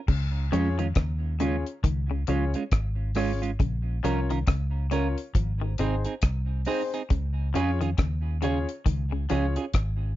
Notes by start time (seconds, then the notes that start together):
0.08 C#2 C#3, kick, crash
0.52 F2 F3 G#3 C#4 F4 G#4 C#5, closed hi-hat
0.79 D#3 G#3 C#4 F4, closed hi-hat
0.95 D#2 C#3, kick, cross-stick, closed hi-hat
1.40 C#3 G#3 C#4 F4 G#4 C#5, closed hi-hat
1.66 closed hi-hat
1.84 C#2 D#3, kick, closed hi-hat
2.11 C#3
2.27 C#2 F3 G#3 C#4 F4 G#4 C#5, closed hi-hat
2.54 G#3 C#4 F4 G#4 C#5, closed hi-hat
2.72 G#1, kick, cross-stick, closed hi-hat
3.15 G#3 C#4 F4 G#4 C#5, cross-stick, open hi-hat
3.42 G#3 C#4 F4, closed hi-hat
3.60 A#1 C#3, kick, closed hi-hat
4.03 C2 F3 C#4 F4 A#4 C#5, closed hi-hat
4.30 D#3 C#4 F4 A#4, closed hi-hat
4.47 C#2 C#3, kick, cross-stick, closed hi-hat
4.91 C#3 C#4 F4 A#4 C#5, closed hi-hat
5.18 closed hi-hat
5.35 G#1 F3, kick, closed hi-hat
5.61 D#3 G#4 C5
5.78 G#1 C3 C4 D#4 G#4 C5, closed hi-hat
6.05 C4 D#4 G#4, closed hi-hat
6.22 C2, kick, cross-stick, closed hi-hat
6.65 C4 D#4 G#4 C5, open hi-hat
6.94 C4 D#4 G#4, closed hi-hat
7.10 C#2 C#3, kick, closed hi-hat
7.54 F2 F3 C#4 F4 G#4 C#5, closed hi-hat
7.81 D#3 C#4 F4 G#4, closed hi-hat
7.98 D#2 C#3, kick, cross-stick, closed hi-hat
8.42 C#3 C#4 F4 G#4 C#5, closed hi-hat
8.69 closed hi-hat
8.86 C#2 D#3, kick, closed hi-hat
9.12 C#3
9.30 C#2 F3 C#4 F4 G#4 C#5, closed hi-hat
9.56 C#4 F4 G#4 C#5, closed hi-hat
9.74 G#1, kick, cross-stick, closed hi-hat